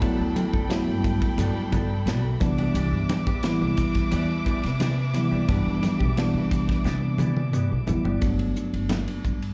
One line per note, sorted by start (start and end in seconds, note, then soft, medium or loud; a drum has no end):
0.00 0.18 D2 medium
0.00 0.60 F#3 medium
0.00 0.22 F#3 medium
0.00 0.60 A3 medium
0.00 0.60 B3 medium
0.00 0.23 B3 medium
0.00 0.23 D4 medium
0.00 0.60 E4 medium
0.00 2.36 A4 medium
0.00 0.23 A4 medium
0.00 2.39 G5 medium
0.00 2.37 B5 medium
0.00 kick loud
0.00 hi-hat pedal medium
0.00 ride medium
0.00 muted conga soft
0.19 0.34 D2 medium
0.36 muted clean electric guitar stroke soft
0.36 hi-hat pedal medium
0.36 ride medium
0.36 high conga medium
0.53 0.84 F#1 medium
0.53 0.69 B3 soft
0.53 0.69 D4 soft
0.53 0.69 A4 medium
0.53 kick medium
0.69 1.86 F#3 medium
0.69 1.86 A3 medium
0.69 1.86 B3 medium
0.69 1.86 E4 medium
0.69 muted clean electric guitar stroke soft
0.69 snare loud
0.69 hi-hat pedal medium
0.69 ride medium
0.87 1.19 G2 medium
0.87 muted clean electric guitar stroke soft
1.04 muted clean electric guitar stroke soft
1.04 kick medium
1.04 hi-hat pedal medium
1.04 ride medium
1.04 muted conga soft
1.22 muted clean electric guitar stroke soft
1.22 kick medium
1.22 ride medium
1.38 2.07 G2 medium
1.38 1.56 F#3 medium
1.38 1.55 B3 medium
1.38 1.55 D4 medium
1.38 1.55 A4 medium
1.38 hi-hat pedal medium
1.38 ride medium
1.38 muted conga soft
1.38 low conga medium
1.56 muted clean electric guitar stroke soft
1.72 1.93 F#3 medium
1.72 1.94 B3 medium
1.72 1.94 D4 medium
1.72 1.94 A4 medium
1.72 kick medium
1.72 hi-hat pedal medium
1.72 ride medium
1.72 muted conga soft
1.72 high conga medium
1.72 low conga medium
2.06 2.37 B1 medium
2.06 2.24 F#3 medium
2.06 2.24 B3 medium
2.06 2.24 D4 medium
2.06 2.24 A4 medium
2.06 snare loud
2.06 hi-hat pedal medium
2.06 ride medium
2.25 muted clean electric guitar stroke soft
2.40 2.72 C2 medium
2.40 3.28 E3 medium
2.40 3.28 G3 medium
2.40 3.28 B3 medium
2.40 3.28 D4 medium
2.40 8.19 B4 medium
2.40 8.19 E5 medium
2.40 8.19 D6 medium
2.40 muted clean electric guitar stroke soft
2.40 kick medium
2.40 hi-hat pedal medium
2.40 ride medium
2.40 high conga medium
2.58 2.75 B3 medium
2.58 2.75 D4 soft
2.58 2.75 G4 medium
2.58 ride medium
2.74 2.91 C2 loud
2.74 2.96 E3 medium
2.74 2.96 B3 medium
2.74 2.96 D4 medium
2.74 2.97 G4 medium
2.74 hi-hat pedal medium
2.74 ride medium
2.74 muted conga soft
2.92 3.27 G2 medium
3.09 muted clean electric guitar stroke soft
3.09 snare soft
3.09 hi-hat pedal medium
3.09 ride medium
3.09 high conga medium
3.27 3.58 A2 medium
3.27 3.42 B3 soft
3.27 3.42 D4 soft
3.27 3.42 G4 medium
3.27 kick medium
3.27 ride medium
3.43 4.59 E3 medium
3.43 4.59 G3 medium
3.43 4.60 B3 medium
3.43 4.60 E4 medium
3.43 snare loud
3.43 hi-hat pedal medium
3.43 ride medium
3.60 3.76 C2 medium
3.60 muted clean electric guitar stroke soft
3.77 muted clean electric guitar stroke soft
3.77 kick medium
3.77 hi-hat pedal medium
3.77 ride medium
3.77 muted conga soft
3.95 muted upright bass stroke soft
3.95 muted clean electric guitar stroke medium
3.95 kick medium
3.95 snare soft
3.95 ride medium
4.11 4.28 E2 medium
4.11 4.29 E3 medium
4.11 4.29 B3 medium
4.11 4.29 D4 medium
4.11 4.28 G4 medium
4.11 hi-hat pedal medium
4.11 ride medium
4.11 muted conga soft
4.29 muted clean electric guitar stroke soft
4.46 4.67 E3 medium
4.46 4.67 B3 medium
4.46 4.67 D4 medium
4.46 4.68 G4 medium
4.46 muted upright bass stroke soft
4.46 kick medium
4.46 hi-hat pedal medium
4.46 ride medium
4.46 muted conga soft
4.63 5.28 C3 medium
4.63 snare soft
4.63 ride medium
4.79 4.97 E3 medium
4.79 4.97 B3 medium
4.79 4.97 D4 medium
4.79 4.96 G4 medium
4.79 snare medium
4.79 hi-hat pedal medium
4.79 ride medium
4.79 high conga medium
4.98 muted clean electric guitar stroke soft
5.14 5.43 E3 medium
5.14 5.43 G3 medium
5.14 5.43 B3 medium
5.14 5.44 E4 medium
5.14 muted clean electric guitar stroke soft
5.14 hi-hat pedal medium
5.14 ride medium
5.14 high conga medium
5.31 5.47 C2 medium
5.31 5.47 B3 soft
5.31 5.47 D4 medium
5.31 5.47 G4 medium
5.48 5.64 G2 medium
5.48 5.69 E3 medium
5.48 6.07 E3 medium
5.48 6.07 G3 medium
5.48 5.69 B3 medium
5.48 6.07 B3 medium
5.48 5.69 D4 medium
5.48 6.07 D4 medium
5.48 5.69 G4 medium
5.48 kick loud
5.48 hi-hat pedal medium
5.48 ride medium
5.48 muted conga soft
5.66 5.81 G2 medium
5.82 muted clean electric guitar stroke soft
5.82 snare soft
5.82 hi-hat pedal medium
5.82 ride medium
5.82 high conga medium
5.99 6.31 B1 medium
5.99 6.15 B3 soft
5.99 6.15 D4 soft
5.99 6.16 G4 medium
5.99 kick medium
6.16 7.33 E3 medium
6.16 7.33 G3 medium
6.16 7.34 B3 medium
6.16 7.34 D4 medium
6.16 muted clean electric guitar stroke soft
6.16 snare loud
6.16 hi-hat pedal medium
6.16 ride medium
6.34 6.65 C3 medium
6.34 muted clean electric guitar stroke soft
6.51 muted clean electric guitar stroke soft
6.51 kick medium
6.51 hi-hat pedal medium
6.51 ride medium
6.51 muted conga soft
6.68 muted clean electric guitar stroke soft
6.68 kick medium
6.68 snare soft
6.68 ride medium
6.84 7.53 C3 medium
6.84 7.02 E3 medium
6.84 7.01 B3 medium
6.84 7.01 D4 medium
6.84 7.00 G4 medium
6.84 snare medium
6.84 hi-hat pedal medium
6.84 muted conga soft
6.84 low conga medium
7.02 muted clean electric guitar stroke soft
7.18 7.40 E3 medium
7.18 7.40 B3 medium
7.18 7.40 D4 medium
7.18 7.40 G4 medium
7.18 hi-hat pedal medium
7.18 high tom medium
7.18 muted conga soft
7.18 high conga medium
7.18 low conga medium
7.37 high tom medium
7.53 7.69 G2 medium
7.53 7.71 E3 medium
7.53 7.70 B3 medium
7.53 7.70 D4 medium
7.53 7.69 G4 medium
7.53 hi-hat pedal medium
7.53 mid tom medium
7.71 7.86 B1 medium
7.71 muted clean electric guitar stroke soft
7.87 8.03 A1 medium
7.87 8.16 E3 medium
7.87 8.17 G3 medium
7.87 8.17 B3 medium
7.87 8.17 E4 medium
7.87 muted clean electric guitar stroke soft
7.87 floor tom medium
7.87 hi-hat pedal medium
7.87 high conga medium
8.05 8.20 G1 medium
8.05 8.22 B3 soft
8.05 8.22 D4 medium
8.05 8.22 G4 medium
8.05 floor tom medium
8.21 8.53 G1 medium
8.21 9.38 F#3 medium
8.21 9.38 A3 medium
8.21 9.38 B3 medium
8.21 9.38 D4 medium
8.21 kick medium
8.21 hi-hat pedal medium
8.21 ride medium
8.21 muted conga soft
8.39 ride soft
8.55 hi-hat pedal medium
8.55 muted conga soft
8.73 9.05 G1 medium
8.73 ride medium
8.89 snare medium
8.89 hi-hat pedal medium
8.89 ride medium
8.89 high conga medium
9.08 ride medium
9.24 9.54 G2 medium
9.24 kick medium
9.24 hi-hat pedal medium
9.42 ride medium